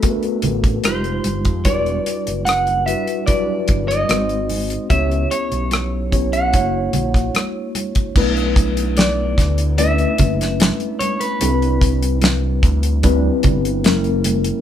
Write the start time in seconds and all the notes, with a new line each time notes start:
Already playing: A3 B3 D4 F#4 A4
0.02 A3 B3 D4 F#4 A#4, kick, closed hi-hat, muted conga
0.10 B4
0.23 closed hi-hat
0.42 A1, closed hi-hat, muted conga, low conga
0.64 kick, closed hi-hat
0.83 F1 G#3 D#4 F4 G4 C5, cross-stick, closed hi-hat, high conga
1.04 closed hi-hat
1.24 G1, closed hi-hat, high conga
1.45 F2, kick, closed hi-hat
1.65 E1 G3 D4 E4 F#4 B4 D5, kick, closed hi-hat, muted conga
1.86 closed hi-hat
2.06 closed hi-hat, muted conga
2.27 F#1, closed hi-hat
2.45 F#5, cross-stick, closed hi-hat, high conga
2.67 closed hi-hat
2.86 G3 D4 E4 F#4 B4 E5, closed hi-hat
3.07 closed hi-hat
3.26 F#3 D4 E4 F#4 B4 D5, kick, closed hi-hat, muted conga
3.34 G3
3.68 G1, kick, closed hi-hat, muted conga
3.88 D#5, cross-stick, closed hi-hat
4.09 G#1 G#3 C4 D#4 F#4 B4, cross-stick, closed hi-hat, high conga
4.17 C5
4.29 closed hi-hat
4.49 open hi-hat, high conga
4.70 closed hi-hat
4.90 C#2 B3 C#4 E4 G4 C#5 E5, kick, closed hi-hat, muted conga
5.11 closed hi-hat
5.31 C#5, closed hi-hat, muted conga
5.52 B1, closed hi-hat
5.71 cross-stick, closed hi-hat, high conga
6.11 B3 C#4 E4 G4 C#5, kick, closed hi-hat
6.33 F#5, closed hi-hat
6.53 F#1 A3 D4 E4 F#4 C#5, kick, closed hi-hat, muted conga
6.59 A#3
6.93 A#1, closed hi-hat, muted conga, low conga
7.14 kick, cross-stick, closed hi-hat
7.34 cross-stick, closed hi-hat, high conga
7.75 closed hi-hat, high conga
7.95 kick, closed hi-hat
8.16 B1 A3 B3 D4 E4 B4, kick, crash, muted conga
8.37 closed hi-hat
8.56 kick, closed hi-hat, muted conga
8.77 closed hi-hat
8.97 D5, snare, closed hi-hat, high conga
9.38 D2, kick, snare, closed hi-hat
9.58 closed hi-hat
9.78 A3 C#4 D4 E4 B4 E5, closed hi-hat, muted conga
9.98 closed hi-hat
10.18 F#1, kick, closed hi-hat, muted conga, low conga
10.41 snare, closed hi-hat
10.60 snare, closed hi-hat, high conga
10.80 closed hi-hat
10.99 C#5, closed hi-hat, high conga
11.20 B4, closed hi-hat
11.41 C2 G3 C4 D4 E4 A4, closed hi-hat, muted conga
11.49 B4
11.62 closed hi-hat
11.81 kick, closed hi-hat
12.03 closed hi-hat
12.22 snare, closed hi-hat, high conga
12.63 D2, kick, closed hi-hat
12.83 closed hi-hat
13.03 G3 C4 D4 E4 B4, kick, closed hi-hat, muted conga
13.43 G1, kick, closed hi-hat, muted conga, low conga
13.65 closed hi-hat
13.84 F#1 F#3 A#3 C#4 E4 A#4, snare, closed hi-hat, high conga
14.04 closed hi-hat
14.24 closed hi-hat, high conga
14.44 closed hi-hat